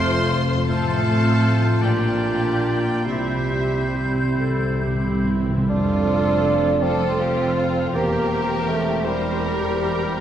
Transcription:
Already playing: F1 F2 C3 A3 C4 F4 A4 C5 F5 C6 F6
0.14 A4
0.31 F4
0.49 A3
0.67 A1 A2 A3 C4 F4 A4 C5 A5 F6
0.86 F3
1.05 A3 C4 F4
1.24 C4
1.62 A4
1.82 A#1 A#2 A#3 D4 F4 G4 D5 G5 G6
1.91 A5
1.99 F3 G5
2.08 A5
2.18 G5
2.22 D4 F4 A5
2.35 G5
2.42 F4 A5
2.53 G5
2.60 A5
2.70 G5
2.83 D5
3.04 C2 C3 G3 C4 E4 G4 C5 E5 G6
3.15 C3
3.24 C3 G3
3.43 C3
3.49 C4 E4
3.60 C3
3.69 C3 E4
3.79 C3
3.96 C3
4.05 C3
4.14 C3
4.23 C3
4.33 C3
4.38 C2 C3 A4 E5
4.50 C3
4.59 C3 G5
4.68 C3
4.77 C3
4.83 C3 C4 E4 G4 E5
4.95 C3
5.05 C3 C5
5.14 C3
5.24 C3
5.28 E4 G4
5.33 C3
5.41 C3
5.49 C3 C4
5.57 C3
5.69 F1 F2 D4 F4 A4 C5
6.07 C4
6.45 A4
6.83 C4 F4 A4 C5 F5
7.20 G4 A4
7.57 F4
7.94 E1 E2 A#3 G4 A#4 C5
8.30 C4
8.69 A3
9.04 G3 G4 A#4 C5 G5
9.44 A#4
9.82 G4 A#4

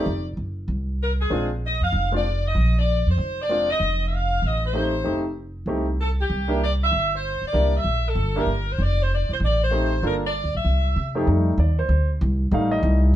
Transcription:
Already playing: D5
0.06 F1
0.37 F#1
0.68 C2
1.02 A#4
1.20 G#4
1.30 A#1 G#3 C4 D4 F4
1.64 D#5
1.81 F2 F5
1.92 F1
2.12 G#3 C4 D4 F4 D5
2.47 D#5
2.55 A#1
2.79 D5
3.07 F2 C5
3.18 F1
3.41 D5
3.49 G#3 C4 D4 F4
3.70 D#5
3.80 F1
4.07 E5
4.14 F5
4.42 A1 D#5
4.65 C5
4.73 A3 C4 D#4 G4
5.04 F1 A3 C4 D#4 G4
5.66 C2 A3 C4 D#4 G4
6.01 A4
6.20 G4
6.30 C2
6.48 A#3 D4 E4 G4
6.63 D5
6.83 E5
6.92 G1
7.15 C5
7.42 muted upright bass stroke
7.46 D5
7.53 C2 A#3 D4 E4 G4
7.76 E5
7.84 A#1
8.08 A4
8.15 G1
8.36 A#3 D4 E4 G4 A#4
8.46 G1
8.71 C5
8.79 F1 D5
9.02 C5
9.13 D5
9.29 E1 C5
9.40 A1 D5
9.63 C5
9.71 A3 C4 D#4 G4
10.02 G1 A#3 D4 F4 A4 A#4
10.26 D5
10.44 D2
10.54 A#1 E5
10.65 C2
10.96 C3
11.15 F2 A3 C4 D#4 G4
11.27 F2 G3 A3 D#4
11.58 D#2 D5
11.79 C5
11.89 D2
12.21 C2
12.51 A1 G3 A3 D#4 F5
12.72 D#5
12.83 C2

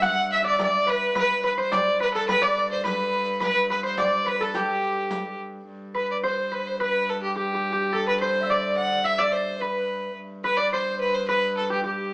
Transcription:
Already playing: G2 A4 B4 D5 E5
0.02 F#5, riq
0.31 E5, riq
0.42 D5 E5
0.58 D5, riq
0.63 D5
0.86 B4, riq
1.14 G2 B4, riq
1.43 B4, riq
1.58 C5
1.72 D5, riq
2.00 B4
2.13 A4
2.28 B4, riq
2.42 D5
2.57 riq
2.71 C5
2.84 B4, riq
3.40 B4, riq
3.70 B4, riq
3.83 C5
3.98 D5, riq
4.24 B4
4.39 A4
4.54 G4, riq
4.83 riq
5.11 riq
5.68 G2
5.94 B4
6.11 D5
6.23 C5
6.31 B4
6.39 C5
6.52 B4
6.65 C5
6.78 B4
7.09 A4
7.21 G4
7.36 G4
7.54 G4
7.72 G4
7.93 A4
8.06 B4
8.20 C5
8.41 E5
8.47 D5
8.77 F#5
9.02 E5
9.18 D5
9.32 C5
9.59 B4
10.16 G2
10.44 B4
10.57 D5
10.71 C5
11.00 B4
11.14 C5
11.27 B4
11.57 A4
11.70 G4
11.84 G4

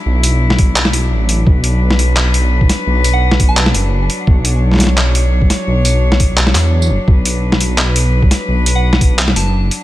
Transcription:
Already playing: F#3 D4 E4
0.06 B1
0.23 closed hi-hat, tambourine
0.50 snare
0.59 kick, closed hi-hat
0.76 clap
0.85 snare
0.93 closed hi-hat
1.11 A1
1.29 closed hi-hat
1.47 B1 B4, kick
1.64 closed hi-hat
1.91 snare
1.99 closed hi-hat
2.16 clap
2.34 closed hi-hat
2.61 kick
2.69 snare, closed hi-hat
2.87 B1
3.04 closed hi-hat, tambourine
3.13 F#5
3.31 snare
3.40 kick, closed hi-hat
3.49 A5
3.57 clap
3.66 snare
3.75 F#1, closed hi-hat
4.10 closed hi-hat
4.27 B1 C#5, kick
4.45 closed hi-hat
4.72 snare
4.74 snare
4.76 snare
4.79 snare, closed hi-hat
4.81 snare
4.84 snare
4.87 snare
4.97 clap
5.15 closed hi-hat
5.42 kick
5.50 snare, closed hi-hat
5.67 B1
5.85 closed hi-hat, tambourine
6.12 snare
6.20 kick, closed hi-hat
6.37 clap
6.47 snare
6.55 E2, clap, closed hi-hat
6.82 tambourine
6.90 F#1
7.08 B1 B4, kick
7.25 closed hi-hat
7.52 snare
7.61 closed hi-hat
7.78 clap
7.96 closed hi-hat
8.22 kick
8.31 snare, closed hi-hat
8.48 B1
8.66 closed hi-hat, tambourine
8.75 F#5
8.93 snare
9.01 kick, closed hi-hat
9.19 clap
9.28 snare
9.36 F#1 A5, closed hi-hat
9.71 closed hi-hat

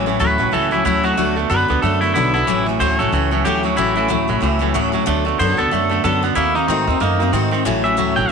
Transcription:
Already playing: A1
0.06 A2 E3 F#3 A3 C#4 F#4
0.20 D2 A2 E3 F#3 A3 C#4 F#4 B4
0.38 A1 A2 F#3 A3 C#4 F#4
0.52 C#2 A2 E3 F#3 A3 C#4 F#4 A4
0.71 A2 E3 F#3 A3 C#4 E4 F#4
0.85 D2 A2 E3 F#3 A3 C#4 E4 F#4
1.03 A2 F#3 A3 C#4 F#4
1.17 D2 D3 F#3 A3 B3 F#4 A4
1.36 D3 A3 B3 F#4 A4
1.50 F#2 D3 F#3 B3 F#4 A4 B4
1.68 D2 D3 B3 F#4 A4
1.82 F#2 D3 F#3 A3 B3 F#4 A4
2.01 D3 A3 E4 F#4 A4
2.05 B3
2.14 B1 D3 F#3 B3 E4 F#4 A4
2.34 D3 B3 E4 F#4 A4
2.47 A1 A2 E3 F#3 A3 C#4 F#4
2.66 A2 E3 F#3 A3 C#4 F#4
2.80 D2 A2 E3 F#3 A3 C#4 F#4 C5
2.99 A1 A2 F#3 A3 C#4 F#4 A4
3.12 C#2 A2 E3 F#3 A3 C#4 F#4
3.31 A2 E3 F#3 A3 C#4 F#4
3.45 D2 A2 E3 F#3 A3 C#4 F#4 G4
3.63 A2 F#3 A3 C#4 F#4
3.77 A1 A2 E3 F#3 A3 C#4 E4 F#4
3.95 A2 E3 F#3 A3 C#4 E4 F#4
4.08 D2 A2 E3 F#3 A3 C#4 F#4
4.28 A1 A2 F#3 A3 C#4 F#4
4.41 C#2 A2 E3 F#3 A3 C#4 F#4
4.59 A2 E3 F#3 A3 C#4 F#4
4.74 D2 A2 E3 F#3 A3 C#4 F#4
4.92 A2 F#3 A3 C#4 F#4
5.06 D2 D3 F#3 A3 B3 F#4 A4
5.25 D3 A3 B3 F#4 A4
5.39 F#2 D3 F#3 B3 F#4 A4 C5
5.57 D2 D3 B3 F#4 A4
5.71 F#2 D3 F#3 A3 B3 F#4 A4
5.89 D3 A3 B3 F#4 A4
6.04 F#2 D3 F#3 B3 F#4 A4
6.23 D3 B3 F#4 A4
6.35 D#2 D#3 A3 A#3 C4 D#4 E4 F#4
6.55 D#3 A#3 C4 D#4 F#4
6.68 G#2 D#3 A3 C4 D#4 F#4
6.87 D#2 D#3 C4 D#4 F#4
7.00 F#2 D#3 A3 A#3 C4 D#4 F#4
7.19 D#3 A#3 C4 D#4 F#4
7.33 G#2 D#3 A3 C4 D#4 F#4
7.51 D#3 C4 D#4 F#4
7.65 A1 A2 E3 F#3 A3 C#4 F#4
7.84 A2 E3 F#3 A3 C#4 F#4 E5
7.97 D2 A2 E3 F#3 A3 C#4 F#4
8.16 A1 A2 F#3 A3 C#4 F#4 G5
8.29 F#3

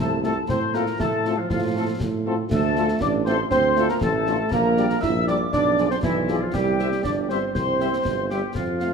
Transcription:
0.00 C2 A3 A4 A5
0.23 A3 C4 F4 A4 A5, snare
0.49 A2 C4 C5 C6, concert bass drum, snare
0.74 A3 A#3 C4 F4 A4 A#4 A#5, snare
0.87 snare
0.99 A2 A3 A4 A5, concert bass drum, snare
1.25 A3 C4 F4 A4, snare
1.37 F3 F4 F5
1.49 A2 F3 F4 F5, concert bass drum, snare
1.75 A3 C4 F4 A4
2.00 A2, concert bass drum, snare
2.26 A3 C4 F4 A4
2.50 D2 A3 A4 A5, concert bass drum, snare, crash
2.76 A3 D4 F4 A4, snare
2.88 snare
3.00 A1 D4 D5 D6, concert bass drum, snare
3.25 A3 C4 D4 F4 A4 C5 C6, snare
3.50 D2 C4 C5 C6, concert bass drum, snare
3.76 A3 D4 F4 A4, snare
3.88 A#3 A#4 A#5, snare
4.01 A1 A3 A4 A5, concert bass drum, snare
4.27 A3 D4 F4 A4, snare
4.51 A#1 A#3 A#4 A#5, concert bass drum, snare
4.77 G3 D4 G4 D5, snare
4.90 snare
5.02 A#1 E4 E5 E6, concert bass drum, snare
5.27 G3 D4 G4 D5 D6, snare
5.53 B1 D4 D5 D6, concert bass drum, snare
5.78 F3 F4 G#4 D5, snare
5.90 C4 C5 C6, snare
6.03 B1 E3 E4 E5, concert bass drum, snare
6.28 F3 F4 G#4 D5, snare
6.41 F3 F4 F5
6.53 C2 G3 G4 G5, concert bass drum, snare, crash
6.79 G3 C4 G4 E5, snare
6.92 snare
7.03 G1 D4 D5 D6, concert bass drum, snare
7.28 G3 C4 G4 C5 E5 C6, snare
7.53 C2 C4 C5 C6, concert bass drum, snare
7.80 G3 C4 G4 E5, snare
7.93 snare
8.04 G1, concert bass drum, snare
8.30 G3 C4 G4 E5 G5, snare
8.55 F2 F3 F4 F5, concert bass drum, snare
8.80 A3 C4 F4 F5, snare

